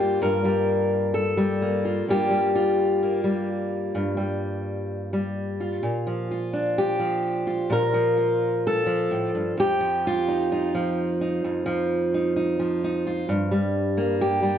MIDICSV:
0, 0, Header, 1, 2, 480
1, 0, Start_track
1, 0, Tempo, 927357
1, 1071, Time_signature, 4, 2, 24, 8
1, 1554, Tempo, 937500
1, 5874, Tempo, 920245
1, 7512, End_track
2, 0, Start_track
2, 0, Title_t, "Steel-string acoustic guitar"
2, 0, Program_c, 0, 25
2, 0, Note_on_c, 0, 43, 64
2, 0, Note_on_c, 0, 55, 54
2, 0, Note_on_c, 0, 58, 39
2, 0, Note_on_c, 0, 67, 76
2, 1, Note_on_c, 0, 65, 39
2, 109, Note_off_c, 0, 43, 0
2, 111, Note_on_c, 0, 43, 67
2, 114, Note_off_c, 0, 67, 0
2, 116, Note_on_c, 0, 70, 86
2, 224, Note_off_c, 0, 55, 0
2, 231, Note_on_c, 0, 55, 57
2, 588, Note_off_c, 0, 70, 0
2, 590, Note_on_c, 0, 69, 84
2, 704, Note_off_c, 0, 55, 0
2, 710, Note_on_c, 0, 55, 57
2, 836, Note_off_c, 0, 58, 0
2, 838, Note_on_c, 0, 58, 42
2, 955, Note_off_c, 0, 65, 0
2, 957, Note_on_c, 0, 65, 41
2, 1042, Note_off_c, 0, 43, 0
2, 1042, Note_off_c, 0, 55, 0
2, 1071, Note_off_c, 0, 69, 0
2, 1079, Note_on_c, 0, 43, 62
2, 1082, Note_on_c, 0, 55, 41
2, 1085, Note_off_c, 0, 58, 0
2, 1087, Note_on_c, 0, 58, 42
2, 1089, Note_off_c, 0, 65, 0
2, 1090, Note_on_c, 0, 67, 84
2, 1091, Note_on_c, 0, 65, 43
2, 1186, Note_off_c, 0, 55, 0
2, 1193, Note_on_c, 0, 55, 46
2, 1320, Note_off_c, 0, 65, 0
2, 1322, Note_on_c, 0, 65, 70
2, 1565, Note_off_c, 0, 58, 0
2, 1567, Note_on_c, 0, 58, 40
2, 1670, Note_off_c, 0, 55, 0
2, 1676, Note_on_c, 0, 55, 51
2, 1801, Note_off_c, 0, 67, 0
2, 2032, Note_off_c, 0, 43, 0
2, 2038, Note_on_c, 0, 43, 61
2, 2145, Note_off_c, 0, 55, 0
2, 2151, Note_on_c, 0, 55, 50
2, 2637, Note_off_c, 0, 55, 0
2, 2643, Note_on_c, 0, 55, 51
2, 2880, Note_off_c, 0, 65, 0
2, 2886, Note_on_c, 0, 65, 38
2, 2977, Note_off_c, 0, 55, 0
2, 2978, Note_off_c, 0, 43, 0
2, 3000, Note_on_c, 0, 46, 62
2, 3123, Note_on_c, 0, 53, 47
2, 3247, Note_off_c, 0, 65, 0
2, 3249, Note_on_c, 0, 65, 38
2, 3360, Note_off_c, 0, 58, 0
2, 3362, Note_on_c, 0, 62, 39
2, 3489, Note_on_c, 0, 67, 75
2, 3596, Note_off_c, 0, 53, 0
2, 3598, Note_on_c, 0, 53, 49
2, 3839, Note_off_c, 0, 65, 0
2, 3841, Note_on_c, 0, 65, 38
2, 3951, Note_off_c, 0, 46, 0
2, 3958, Note_on_c, 0, 46, 64
2, 3966, Note_off_c, 0, 67, 0
2, 3971, Note_on_c, 0, 70, 85
2, 4078, Note_off_c, 0, 53, 0
2, 4080, Note_on_c, 0, 53, 54
2, 4200, Note_off_c, 0, 65, 0
2, 4202, Note_on_c, 0, 65, 39
2, 4446, Note_off_c, 0, 70, 0
2, 4455, Note_on_c, 0, 69, 86
2, 4553, Note_off_c, 0, 53, 0
2, 4555, Note_on_c, 0, 53, 52
2, 4677, Note_off_c, 0, 46, 0
2, 4681, Note_on_c, 0, 45, 56
2, 4800, Note_off_c, 0, 45, 0
2, 4803, Note_on_c, 0, 43, 58
2, 4889, Note_off_c, 0, 62, 0
2, 4916, Note_off_c, 0, 43, 0
2, 4918, Note_on_c, 0, 41, 63
2, 4925, Note_off_c, 0, 69, 0
2, 4931, Note_on_c, 0, 67, 90
2, 4946, Note_off_c, 0, 65, 0
2, 5035, Note_off_c, 0, 53, 0
2, 5037, Note_on_c, 0, 53, 51
2, 5172, Note_on_c, 0, 65, 75
2, 5281, Note_on_c, 0, 63, 41
2, 5400, Note_off_c, 0, 63, 0
2, 5402, Note_on_c, 0, 63, 43
2, 5516, Note_off_c, 0, 53, 0
2, 5518, Note_on_c, 0, 53, 56
2, 5644, Note_off_c, 0, 67, 0
2, 5755, Note_off_c, 0, 63, 0
2, 5757, Note_on_c, 0, 63, 42
2, 5870, Note_off_c, 0, 41, 0
2, 5876, Note_on_c, 0, 41, 63
2, 5985, Note_off_c, 0, 53, 0
2, 5987, Note_on_c, 0, 53, 60
2, 6234, Note_off_c, 0, 63, 0
2, 6240, Note_on_c, 0, 63, 43
2, 6349, Note_off_c, 0, 63, 0
2, 6355, Note_on_c, 0, 63, 46
2, 6474, Note_off_c, 0, 53, 0
2, 6476, Note_on_c, 0, 53, 57
2, 6597, Note_off_c, 0, 63, 0
2, 6605, Note_on_c, 0, 63, 43
2, 6716, Note_off_c, 0, 65, 0
2, 6723, Note_on_c, 0, 65, 44
2, 6813, Note_off_c, 0, 63, 0
2, 6835, Note_off_c, 0, 41, 0
2, 6837, Note_on_c, 0, 43, 70
2, 6853, Note_off_c, 0, 65, 0
2, 6953, Note_off_c, 0, 53, 0
2, 6955, Note_on_c, 0, 55, 52
2, 7196, Note_on_c, 0, 58, 45
2, 7321, Note_on_c, 0, 67, 75
2, 7425, Note_off_c, 0, 55, 0
2, 7431, Note_on_c, 0, 55, 52
2, 7512, Note_off_c, 0, 43, 0
2, 7512, Note_off_c, 0, 55, 0
2, 7512, Note_off_c, 0, 58, 0
2, 7512, Note_off_c, 0, 67, 0
2, 7512, End_track
0, 0, End_of_file